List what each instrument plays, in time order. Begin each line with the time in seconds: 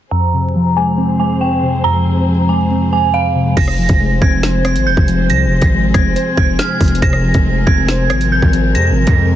0.11 synth keys F2, string section F3 C4 G#4 C5, synth bell A#5
0.33 synth keys C3
0.55 synth keys F3
0.76 synth keys G#3, synth bell G#5
0.98 synth keys C4
1.19 synth keys G#3, synth bell G#5
1.41 synth bell G5
1.63 synth keys C3
1.84 synth keys F2, synth bell A#5
2.05 synth keys C3
2.27 synth keys F3
2.49 synth keys G#3, synth bell G#5
2.71 synth keys C4
2.92 synth keys G#3, synth bell G#5
3.14 synth bell F5
3.35 synth keys C3
3.57 808-style bass F1, string section F3 C4 G#4 C5, synth bell A#6, kick, closed hi-hat, crash
3.68 cross-stick
3.78 synth keys F3
3.89 808-style bass F1, kick, closed hi-hat
4.00 synth keys G#3
4.22 808-style bass F1, synth keys C4, synth bell G#6, kick
4.43 synth keys C5, snare, closed hi-hat
4.65 synth keys C4, synth bell G#6, cross-stick, closed hi-hat
4.76 808-style bass G#1, closed hi-hat
4.86 808-style bass F1, synth bell G6
4.97 808-style bass F1, kick
5.08 synth keys F3, closed hi-hat
5.29 808-style bass C2, synth keys C3, synth bell A#6, closed hi-hat
5.46 808-style bass F1
5.51 synth keys F3
5.62 808-style bass G#1, kick, closed hi-hat
5.73 synth keys G#3
5.94 808-style bass F1, synth keys C4, synth bell G#6, kick, cross-stick, closed hi-hat
6.16 synth keys C5, closed hi-hat
6.37 808-style bass F1, synth keys C4, synth bell G#6, kick
6.59 synth bell F6, snare, closed hi-hat
6.81 808-style bass F1, synth keys F3, kick, closed hi-hat, open hi-hat
6.88 closed hi-hat
6.95 closed hi-hat
7.02 808-style bass F1, synth keys C3, string section A#4, synth bell A#6, kick, closed hi-hat
7.13 cross-stick
7.24 synth keys F3
7.34 808-style bass F1, kick, closed hi-hat
7.45 synth keys G#3
7.67 808-style bass F1, synth keys C4, synth bell G#6, kick
7.88 synth keys C5, snare, closed hi-hat
8.10 808-style bass G#1, synth keys C4, synth bell G#6, cross-stick, closed hi-hat
8.21 closed hi-hat
8.32 synth bell G6
8.42 808-style bass G#1, kick
8.53 synth keys F3, closed hi-hat
8.75 808-style bass F2, synth keys C3, synth bell A#6, closed hi-hat
8.91 808-style bass G#1
8.97 synth keys F3
9.07 808-style bass F2, kick, closed hi-hat
9.18 synth keys G#3